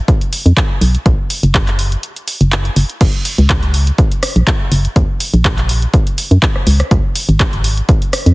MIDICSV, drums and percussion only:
0, 0, Header, 1, 2, 480
1, 0, Start_track
1, 0, Tempo, 487805
1, 1041, Time_signature, 4, 2, 24, 8
1, 8209, End_track
2, 0, Start_track
2, 0, Title_t, "Drums"
2, 80, Note_on_c, 9, 36, 109
2, 81, Note_on_c, 9, 42, 65
2, 179, Note_off_c, 9, 36, 0
2, 179, Note_off_c, 9, 42, 0
2, 210, Note_on_c, 9, 42, 39
2, 309, Note_off_c, 9, 42, 0
2, 321, Note_on_c, 9, 46, 100
2, 419, Note_off_c, 9, 46, 0
2, 451, Note_on_c, 9, 42, 53
2, 550, Note_off_c, 9, 42, 0
2, 560, Note_on_c, 9, 36, 110
2, 562, Note_on_c, 9, 42, 65
2, 565, Note_on_c, 9, 39, 114
2, 659, Note_off_c, 9, 36, 0
2, 660, Note_off_c, 9, 42, 0
2, 663, Note_off_c, 9, 39, 0
2, 802, Note_on_c, 9, 46, 94
2, 900, Note_off_c, 9, 46, 0
2, 931, Note_on_c, 9, 42, 51
2, 1029, Note_off_c, 9, 42, 0
2, 1040, Note_on_c, 9, 36, 111
2, 1041, Note_on_c, 9, 42, 68
2, 1139, Note_off_c, 9, 36, 0
2, 1139, Note_off_c, 9, 42, 0
2, 1280, Note_on_c, 9, 46, 100
2, 1379, Note_off_c, 9, 46, 0
2, 1410, Note_on_c, 9, 42, 54
2, 1508, Note_off_c, 9, 42, 0
2, 1520, Note_on_c, 9, 36, 113
2, 1520, Note_on_c, 9, 42, 65
2, 1523, Note_on_c, 9, 39, 118
2, 1619, Note_off_c, 9, 36, 0
2, 1619, Note_off_c, 9, 42, 0
2, 1622, Note_off_c, 9, 39, 0
2, 1650, Note_on_c, 9, 42, 38
2, 1653, Note_on_c, 9, 39, 36
2, 1748, Note_off_c, 9, 42, 0
2, 1751, Note_off_c, 9, 39, 0
2, 1760, Note_on_c, 9, 46, 96
2, 1858, Note_off_c, 9, 46, 0
2, 1889, Note_on_c, 9, 42, 54
2, 1988, Note_off_c, 9, 42, 0
2, 2000, Note_on_c, 9, 42, 67
2, 2098, Note_off_c, 9, 42, 0
2, 2129, Note_on_c, 9, 42, 37
2, 2228, Note_off_c, 9, 42, 0
2, 2239, Note_on_c, 9, 46, 100
2, 2338, Note_off_c, 9, 46, 0
2, 2369, Note_on_c, 9, 42, 53
2, 2467, Note_off_c, 9, 42, 0
2, 2479, Note_on_c, 9, 42, 67
2, 2482, Note_on_c, 9, 39, 114
2, 2578, Note_off_c, 9, 42, 0
2, 2581, Note_off_c, 9, 39, 0
2, 2609, Note_on_c, 9, 42, 37
2, 2707, Note_off_c, 9, 42, 0
2, 2719, Note_on_c, 9, 46, 102
2, 2817, Note_off_c, 9, 46, 0
2, 2849, Note_on_c, 9, 42, 54
2, 2947, Note_off_c, 9, 42, 0
2, 2960, Note_on_c, 9, 36, 112
2, 2960, Note_on_c, 9, 42, 67
2, 2960, Note_on_c, 9, 49, 73
2, 3058, Note_off_c, 9, 42, 0
2, 3058, Note_off_c, 9, 49, 0
2, 3059, Note_off_c, 9, 36, 0
2, 3199, Note_on_c, 9, 46, 102
2, 3298, Note_off_c, 9, 46, 0
2, 3329, Note_on_c, 9, 42, 55
2, 3427, Note_off_c, 9, 42, 0
2, 3439, Note_on_c, 9, 42, 67
2, 3440, Note_on_c, 9, 36, 118
2, 3442, Note_on_c, 9, 39, 119
2, 3537, Note_off_c, 9, 42, 0
2, 3539, Note_off_c, 9, 36, 0
2, 3541, Note_off_c, 9, 39, 0
2, 3569, Note_on_c, 9, 42, 39
2, 3667, Note_off_c, 9, 42, 0
2, 3679, Note_on_c, 9, 46, 103
2, 3778, Note_off_c, 9, 46, 0
2, 3809, Note_on_c, 9, 42, 54
2, 3908, Note_off_c, 9, 42, 0
2, 3920, Note_on_c, 9, 36, 115
2, 3920, Note_on_c, 9, 42, 68
2, 4018, Note_off_c, 9, 42, 0
2, 4019, Note_off_c, 9, 36, 0
2, 4050, Note_on_c, 9, 42, 38
2, 4148, Note_off_c, 9, 42, 0
2, 4159, Note_on_c, 9, 37, 75
2, 4159, Note_on_c, 9, 46, 105
2, 4258, Note_off_c, 9, 37, 0
2, 4258, Note_off_c, 9, 46, 0
2, 4289, Note_on_c, 9, 42, 53
2, 4388, Note_off_c, 9, 42, 0
2, 4400, Note_on_c, 9, 36, 116
2, 4400, Note_on_c, 9, 42, 66
2, 4403, Note_on_c, 9, 39, 117
2, 4498, Note_off_c, 9, 42, 0
2, 4499, Note_off_c, 9, 36, 0
2, 4501, Note_off_c, 9, 39, 0
2, 4641, Note_on_c, 9, 46, 104
2, 4739, Note_off_c, 9, 46, 0
2, 4771, Note_on_c, 9, 42, 54
2, 4869, Note_off_c, 9, 42, 0
2, 4880, Note_on_c, 9, 42, 66
2, 4881, Note_on_c, 9, 36, 120
2, 4979, Note_off_c, 9, 36, 0
2, 4979, Note_off_c, 9, 42, 0
2, 5120, Note_on_c, 9, 46, 109
2, 5219, Note_off_c, 9, 46, 0
2, 5250, Note_on_c, 9, 42, 51
2, 5349, Note_off_c, 9, 42, 0
2, 5361, Note_on_c, 9, 36, 120
2, 5361, Note_on_c, 9, 42, 65
2, 5364, Note_on_c, 9, 39, 123
2, 5459, Note_off_c, 9, 36, 0
2, 5459, Note_off_c, 9, 42, 0
2, 5462, Note_off_c, 9, 39, 0
2, 5490, Note_on_c, 9, 42, 37
2, 5493, Note_on_c, 9, 39, 39
2, 5589, Note_off_c, 9, 42, 0
2, 5592, Note_off_c, 9, 39, 0
2, 5601, Note_on_c, 9, 46, 106
2, 5699, Note_off_c, 9, 46, 0
2, 5730, Note_on_c, 9, 42, 53
2, 5829, Note_off_c, 9, 42, 0
2, 5841, Note_on_c, 9, 36, 120
2, 5841, Note_on_c, 9, 42, 68
2, 5939, Note_off_c, 9, 36, 0
2, 5939, Note_off_c, 9, 42, 0
2, 5971, Note_on_c, 9, 42, 38
2, 6069, Note_off_c, 9, 42, 0
2, 6081, Note_on_c, 9, 46, 108
2, 6179, Note_off_c, 9, 46, 0
2, 6211, Note_on_c, 9, 42, 52
2, 6309, Note_off_c, 9, 42, 0
2, 6321, Note_on_c, 9, 36, 122
2, 6321, Note_on_c, 9, 42, 65
2, 6324, Note_on_c, 9, 39, 120
2, 6419, Note_off_c, 9, 36, 0
2, 6419, Note_off_c, 9, 42, 0
2, 6423, Note_off_c, 9, 39, 0
2, 6451, Note_on_c, 9, 37, 56
2, 6549, Note_off_c, 9, 37, 0
2, 6561, Note_on_c, 9, 46, 106
2, 6659, Note_off_c, 9, 46, 0
2, 6690, Note_on_c, 9, 37, 62
2, 6690, Note_on_c, 9, 42, 52
2, 6789, Note_off_c, 9, 37, 0
2, 6789, Note_off_c, 9, 42, 0
2, 6801, Note_on_c, 9, 36, 123
2, 6801, Note_on_c, 9, 42, 64
2, 6899, Note_off_c, 9, 42, 0
2, 6900, Note_off_c, 9, 36, 0
2, 7040, Note_on_c, 9, 46, 109
2, 7139, Note_off_c, 9, 46, 0
2, 7170, Note_on_c, 9, 42, 51
2, 7269, Note_off_c, 9, 42, 0
2, 7280, Note_on_c, 9, 42, 62
2, 7281, Note_on_c, 9, 36, 126
2, 7283, Note_on_c, 9, 39, 117
2, 7379, Note_off_c, 9, 36, 0
2, 7379, Note_off_c, 9, 42, 0
2, 7382, Note_off_c, 9, 39, 0
2, 7410, Note_on_c, 9, 42, 36
2, 7509, Note_off_c, 9, 42, 0
2, 7520, Note_on_c, 9, 46, 110
2, 7618, Note_off_c, 9, 46, 0
2, 7650, Note_on_c, 9, 42, 51
2, 7749, Note_off_c, 9, 42, 0
2, 7761, Note_on_c, 9, 36, 124
2, 7761, Note_on_c, 9, 42, 63
2, 7859, Note_off_c, 9, 36, 0
2, 7859, Note_off_c, 9, 42, 0
2, 7890, Note_on_c, 9, 42, 36
2, 7989, Note_off_c, 9, 42, 0
2, 8001, Note_on_c, 9, 37, 77
2, 8001, Note_on_c, 9, 46, 113
2, 8099, Note_off_c, 9, 37, 0
2, 8099, Note_off_c, 9, 46, 0
2, 8131, Note_on_c, 9, 42, 51
2, 8209, Note_off_c, 9, 42, 0
2, 8209, End_track
0, 0, End_of_file